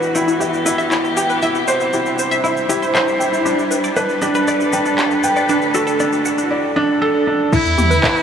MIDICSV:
0, 0, Header, 1, 7, 480
1, 0, Start_track
1, 0, Key_signature, 1, "minor"
1, 0, Tempo, 508475
1, 1345, Time_signature, 4, 2, 24, 8
1, 7765, End_track
2, 0, Start_track
2, 0, Title_t, "Synth arpeggio sound"
2, 0, Program_c, 0, 84
2, 139, Note_on_c, 0, 79, 72
2, 221, Note_off_c, 0, 79, 0
2, 263, Note_on_c, 0, 64, 75
2, 342, Note_off_c, 0, 64, 0
2, 380, Note_on_c, 0, 67, 82
2, 497, Note_off_c, 0, 67, 0
2, 621, Note_on_c, 0, 71, 75
2, 670, Note_off_c, 0, 71, 0
2, 739, Note_on_c, 0, 76, 91
2, 820, Note_off_c, 0, 76, 0
2, 862, Note_on_c, 0, 64, 100
2, 911, Note_off_c, 0, 64, 0
2, 1104, Note_on_c, 0, 67, 99
2, 1183, Note_off_c, 0, 67, 0
2, 1226, Note_on_c, 0, 71, 90
2, 1340, Note_off_c, 0, 71, 0
2, 1346, Note_on_c, 0, 76, 103
2, 1393, Note_off_c, 0, 76, 0
2, 1587, Note_on_c, 0, 79, 77
2, 1664, Note_off_c, 0, 79, 0
2, 1704, Note_on_c, 0, 64, 74
2, 1783, Note_off_c, 0, 64, 0
2, 1828, Note_on_c, 0, 67, 78
2, 1941, Note_off_c, 0, 67, 0
2, 2069, Note_on_c, 0, 72, 74
2, 2114, Note_off_c, 0, 72, 0
2, 2184, Note_on_c, 0, 76, 111
2, 2263, Note_off_c, 0, 76, 0
2, 2301, Note_on_c, 0, 64, 100
2, 2350, Note_off_c, 0, 64, 0
2, 2543, Note_on_c, 0, 67, 103
2, 2623, Note_off_c, 0, 67, 0
2, 2665, Note_on_c, 0, 72, 100
2, 2779, Note_off_c, 0, 72, 0
2, 2780, Note_on_c, 0, 76, 99
2, 2830, Note_off_c, 0, 76, 0
2, 3019, Note_on_c, 0, 79, 75
2, 3101, Note_off_c, 0, 79, 0
2, 3139, Note_on_c, 0, 64, 72
2, 3220, Note_off_c, 0, 64, 0
2, 3260, Note_on_c, 0, 67, 83
2, 3377, Note_off_c, 0, 67, 0
2, 3502, Note_on_c, 0, 71, 75
2, 3550, Note_off_c, 0, 71, 0
2, 3625, Note_on_c, 0, 74, 100
2, 3703, Note_off_c, 0, 74, 0
2, 3746, Note_on_c, 0, 62, 100
2, 3793, Note_off_c, 0, 62, 0
2, 3988, Note_on_c, 0, 67, 94
2, 4065, Note_off_c, 0, 67, 0
2, 4106, Note_on_c, 0, 71, 109
2, 4220, Note_off_c, 0, 71, 0
2, 4229, Note_on_c, 0, 74, 100
2, 4274, Note_off_c, 0, 74, 0
2, 4467, Note_on_c, 0, 79, 72
2, 4544, Note_off_c, 0, 79, 0
2, 4583, Note_on_c, 0, 62, 72
2, 4663, Note_off_c, 0, 62, 0
2, 4706, Note_on_c, 0, 67, 81
2, 4820, Note_off_c, 0, 67, 0
2, 4947, Note_on_c, 0, 71, 74
2, 4993, Note_off_c, 0, 71, 0
2, 5065, Note_on_c, 0, 74, 96
2, 5143, Note_off_c, 0, 74, 0
2, 5185, Note_on_c, 0, 62, 106
2, 5232, Note_off_c, 0, 62, 0
2, 5423, Note_on_c, 0, 66, 102
2, 5502, Note_off_c, 0, 66, 0
2, 5539, Note_on_c, 0, 69, 104
2, 5656, Note_off_c, 0, 69, 0
2, 5665, Note_on_c, 0, 74, 92
2, 5712, Note_off_c, 0, 74, 0
2, 5906, Note_on_c, 0, 78, 72
2, 5984, Note_off_c, 0, 78, 0
2, 6025, Note_on_c, 0, 62, 83
2, 6103, Note_off_c, 0, 62, 0
2, 7104, Note_on_c, 0, 64, 108
2, 7152, Note_off_c, 0, 64, 0
2, 7343, Note_on_c, 0, 67, 97
2, 7422, Note_off_c, 0, 67, 0
2, 7463, Note_on_c, 0, 71, 106
2, 7578, Note_off_c, 0, 71, 0
2, 7583, Note_on_c, 0, 76, 93
2, 7631, Note_off_c, 0, 76, 0
2, 7765, End_track
3, 0, Start_track
3, 0, Title_t, "Cello"
3, 0, Program_c, 1, 42
3, 7104, Note_on_c, 1, 64, 121
3, 7765, Note_off_c, 1, 64, 0
3, 7765, End_track
4, 0, Start_track
4, 0, Title_t, "Felt piano"
4, 0, Program_c, 2, 0
4, 0, Control_c, 2, 64, 127
4, 0, Note_on_c, 2, 71, 88
4, 133, Note_off_c, 2, 71, 0
4, 145, Note_on_c, 2, 64, 93
4, 373, Note_off_c, 2, 64, 0
4, 380, Note_on_c, 2, 76, 78
4, 611, Note_off_c, 2, 76, 0
4, 621, Note_on_c, 2, 64, 102
4, 760, Note_off_c, 2, 64, 0
4, 1104, Note_on_c, 2, 79, 73
4, 1333, Note_off_c, 2, 79, 0
4, 1347, Note_on_c, 2, 64, 81
4, 1358, Control_c, 2, 64, 0
4, 1483, Note_off_c, 2, 64, 0
4, 1547, Control_c, 2, 64, 127
4, 1583, Note_on_c, 2, 72, 98
4, 1721, Note_off_c, 2, 72, 0
4, 1822, Note_on_c, 2, 64, 72
4, 2051, Note_off_c, 2, 64, 0
4, 2304, Note_on_c, 2, 76, 77
4, 2533, Note_off_c, 2, 76, 0
4, 2540, Note_on_c, 2, 64, 104
4, 2771, Note_off_c, 2, 64, 0
4, 2784, Note_on_c, 2, 72, 100
4, 3013, Note_off_c, 2, 72, 0
4, 3026, Note_on_c, 2, 64, 74
4, 3253, Note_off_c, 2, 64, 0
4, 3261, Note_on_c, 2, 62, 80
4, 3279, Control_c, 2, 64, 0
4, 3400, Note_off_c, 2, 62, 0
4, 3465, Control_c, 2, 64, 127
4, 3743, Note_on_c, 2, 71, 103
4, 3972, Note_off_c, 2, 71, 0
4, 3979, Note_on_c, 2, 62, 105
4, 4210, Note_off_c, 2, 62, 0
4, 4223, Note_on_c, 2, 74, 85
4, 4452, Note_off_c, 2, 74, 0
4, 4463, Note_on_c, 2, 62, 102
4, 4601, Note_off_c, 2, 62, 0
4, 4944, Note_on_c, 2, 79, 78
4, 5173, Note_off_c, 2, 79, 0
4, 5183, Note_on_c, 2, 62, 88
4, 5199, Control_c, 2, 64, 0
4, 5321, Note_off_c, 2, 62, 0
4, 5344, Control_c, 2, 64, 127
4, 5423, Note_on_c, 2, 69, 103
4, 5561, Note_off_c, 2, 69, 0
4, 5665, Note_on_c, 2, 62, 72
4, 5893, Note_off_c, 2, 62, 0
4, 6142, Note_on_c, 2, 74, 83
4, 6372, Note_off_c, 2, 74, 0
4, 6382, Note_on_c, 2, 62, 107
4, 6612, Note_off_c, 2, 62, 0
4, 6623, Note_on_c, 2, 69, 103
4, 6852, Note_off_c, 2, 69, 0
4, 6864, Note_on_c, 2, 62, 77
4, 7093, Note_off_c, 2, 62, 0
4, 7104, Note_on_c, 2, 64, 80
4, 7116, Control_c, 2, 64, 0
4, 7242, Note_off_c, 2, 64, 0
4, 7284, Control_c, 2, 64, 127
4, 7582, Note_on_c, 2, 71, 99
4, 7765, Note_off_c, 2, 71, 0
4, 7765, End_track
5, 0, Start_track
5, 0, Title_t, "String quartet"
5, 0, Program_c, 3, 48
5, 0, Note_on_c, 3, 52, 76
5, 0, Note_on_c, 3, 59, 68
5, 0, Note_on_c, 3, 64, 63
5, 0, Note_on_c, 3, 66, 86
5, 195, Note_off_c, 3, 64, 0
5, 290, Note_on_c, 3, 67, 90
5, 1344, Note_on_c, 3, 48, 73
5, 1348, Note_off_c, 3, 52, 0
5, 1776, Note_on_c, 3, 55, 81
5, 1823, Note_on_c, 3, 62, 76
5, 2114, Note_off_c, 3, 59, 0
5, 2114, Note_off_c, 3, 67, 0
5, 2115, Note_off_c, 3, 66, 0
5, 2204, Note_on_c, 3, 64, 93
5, 3265, Note_off_c, 3, 48, 0
5, 4031, Note_off_c, 3, 64, 0
5, 4129, Note_on_c, 3, 71, 89
5, 4130, Note_on_c, 3, 69, 86
5, 5181, Note_off_c, 3, 55, 0
5, 5194, Note_on_c, 3, 50, 75
5, 5287, Note_on_c, 3, 57, 72
5, 5947, Note_off_c, 3, 62, 0
5, 5953, Note_off_c, 3, 71, 0
5, 5954, Note_off_c, 3, 69, 0
5, 6052, Note_on_c, 3, 64, 74
5, 6052, Note_on_c, 3, 66, 78
5, 6146, Note_off_c, 3, 57, 0
5, 6146, Note_off_c, 3, 64, 0
5, 6147, Note_off_c, 3, 66, 0
5, 6150, Note_off_c, 3, 50, 0
5, 7108, Note_on_c, 3, 52, 82
5, 7642, Note_on_c, 3, 59, 78
5, 7765, Note_off_c, 3, 52, 0
5, 7765, Note_off_c, 3, 59, 0
5, 7765, End_track
6, 0, Start_track
6, 0, Title_t, "Analog synth bass"
6, 0, Program_c, 4, 38
6, 7224, Note_on_c, 4, 40, 90
6, 7323, Note_off_c, 4, 40, 0
6, 7344, Note_on_c, 4, 40, 98
6, 7542, Note_off_c, 4, 40, 0
6, 7765, End_track
7, 0, Start_track
7, 0, Title_t, "Drums"
7, 23, Note_on_c, 9, 82, 20
7, 117, Note_off_c, 9, 82, 0
7, 144, Note_on_c, 9, 82, 64
7, 238, Note_off_c, 9, 82, 0
7, 266, Note_on_c, 9, 82, 28
7, 360, Note_off_c, 9, 82, 0
7, 386, Note_on_c, 9, 82, 36
7, 480, Note_off_c, 9, 82, 0
7, 506, Note_on_c, 9, 82, 22
7, 600, Note_off_c, 9, 82, 0
7, 624, Note_on_c, 9, 82, 74
7, 718, Note_off_c, 9, 82, 0
7, 746, Note_on_c, 9, 82, 28
7, 840, Note_off_c, 9, 82, 0
7, 865, Note_on_c, 9, 39, 68
7, 865, Note_on_c, 9, 82, 40
7, 960, Note_off_c, 9, 39, 0
7, 960, Note_off_c, 9, 82, 0
7, 986, Note_on_c, 9, 82, 21
7, 1080, Note_off_c, 9, 82, 0
7, 1103, Note_on_c, 9, 82, 72
7, 1198, Note_off_c, 9, 82, 0
7, 1224, Note_on_c, 9, 82, 30
7, 1318, Note_off_c, 9, 82, 0
7, 1342, Note_on_c, 9, 82, 39
7, 1436, Note_off_c, 9, 82, 0
7, 1462, Note_on_c, 9, 82, 19
7, 1556, Note_off_c, 9, 82, 0
7, 1584, Note_on_c, 9, 82, 60
7, 1678, Note_off_c, 9, 82, 0
7, 1703, Note_on_c, 9, 82, 31
7, 1797, Note_off_c, 9, 82, 0
7, 1824, Note_on_c, 9, 82, 38
7, 1918, Note_off_c, 9, 82, 0
7, 1943, Note_on_c, 9, 82, 20
7, 2038, Note_off_c, 9, 82, 0
7, 2063, Note_on_c, 9, 82, 66
7, 2158, Note_off_c, 9, 82, 0
7, 2186, Note_on_c, 9, 82, 29
7, 2280, Note_off_c, 9, 82, 0
7, 2306, Note_on_c, 9, 82, 36
7, 2400, Note_off_c, 9, 82, 0
7, 2426, Note_on_c, 9, 82, 22
7, 2520, Note_off_c, 9, 82, 0
7, 2546, Note_on_c, 9, 82, 72
7, 2641, Note_off_c, 9, 82, 0
7, 2668, Note_on_c, 9, 82, 30
7, 2762, Note_off_c, 9, 82, 0
7, 2786, Note_on_c, 9, 39, 71
7, 2786, Note_on_c, 9, 82, 43
7, 2881, Note_off_c, 9, 39, 0
7, 2881, Note_off_c, 9, 82, 0
7, 2906, Note_on_c, 9, 82, 19
7, 3001, Note_off_c, 9, 82, 0
7, 3027, Note_on_c, 9, 82, 69
7, 3121, Note_off_c, 9, 82, 0
7, 3148, Note_on_c, 9, 82, 31
7, 3243, Note_off_c, 9, 82, 0
7, 3265, Note_on_c, 9, 82, 41
7, 3359, Note_off_c, 9, 82, 0
7, 3387, Note_on_c, 9, 82, 20
7, 3481, Note_off_c, 9, 82, 0
7, 3504, Note_on_c, 9, 82, 66
7, 3599, Note_off_c, 9, 82, 0
7, 3624, Note_on_c, 9, 82, 31
7, 3718, Note_off_c, 9, 82, 0
7, 3742, Note_on_c, 9, 82, 40
7, 3837, Note_off_c, 9, 82, 0
7, 3862, Note_on_c, 9, 82, 19
7, 3956, Note_off_c, 9, 82, 0
7, 3982, Note_on_c, 9, 82, 68
7, 4076, Note_off_c, 9, 82, 0
7, 4103, Note_on_c, 9, 82, 29
7, 4198, Note_off_c, 9, 82, 0
7, 4224, Note_on_c, 9, 82, 36
7, 4319, Note_off_c, 9, 82, 0
7, 4346, Note_on_c, 9, 82, 23
7, 4440, Note_off_c, 9, 82, 0
7, 4463, Note_on_c, 9, 82, 67
7, 4558, Note_off_c, 9, 82, 0
7, 4582, Note_on_c, 9, 82, 28
7, 4677, Note_off_c, 9, 82, 0
7, 4705, Note_on_c, 9, 39, 72
7, 4705, Note_on_c, 9, 82, 40
7, 4799, Note_off_c, 9, 39, 0
7, 4799, Note_off_c, 9, 82, 0
7, 4822, Note_on_c, 9, 82, 19
7, 4917, Note_off_c, 9, 82, 0
7, 4942, Note_on_c, 9, 82, 70
7, 5036, Note_off_c, 9, 82, 0
7, 5063, Note_on_c, 9, 82, 29
7, 5157, Note_off_c, 9, 82, 0
7, 5182, Note_on_c, 9, 82, 41
7, 5276, Note_off_c, 9, 82, 0
7, 5303, Note_on_c, 9, 82, 18
7, 5397, Note_off_c, 9, 82, 0
7, 5422, Note_on_c, 9, 82, 68
7, 5516, Note_off_c, 9, 82, 0
7, 5543, Note_on_c, 9, 82, 31
7, 5637, Note_off_c, 9, 82, 0
7, 5661, Note_on_c, 9, 82, 40
7, 5755, Note_off_c, 9, 82, 0
7, 5782, Note_on_c, 9, 82, 21
7, 5877, Note_off_c, 9, 82, 0
7, 5902, Note_on_c, 9, 82, 72
7, 5996, Note_off_c, 9, 82, 0
7, 6024, Note_on_c, 9, 82, 30
7, 6118, Note_off_c, 9, 82, 0
7, 7105, Note_on_c, 9, 36, 103
7, 7108, Note_on_c, 9, 49, 100
7, 7108, Note_on_c, 9, 82, 42
7, 7200, Note_off_c, 9, 36, 0
7, 7203, Note_off_c, 9, 49, 0
7, 7203, Note_off_c, 9, 82, 0
7, 7226, Note_on_c, 9, 82, 20
7, 7321, Note_off_c, 9, 82, 0
7, 7346, Note_on_c, 9, 45, 63
7, 7346, Note_on_c, 9, 82, 68
7, 7441, Note_off_c, 9, 45, 0
7, 7441, Note_off_c, 9, 82, 0
7, 7466, Note_on_c, 9, 82, 32
7, 7561, Note_off_c, 9, 82, 0
7, 7584, Note_on_c, 9, 36, 106
7, 7587, Note_on_c, 9, 39, 100
7, 7587, Note_on_c, 9, 82, 41
7, 7679, Note_off_c, 9, 36, 0
7, 7682, Note_off_c, 9, 39, 0
7, 7682, Note_off_c, 9, 82, 0
7, 7707, Note_on_c, 9, 82, 22
7, 7765, Note_off_c, 9, 82, 0
7, 7765, End_track
0, 0, End_of_file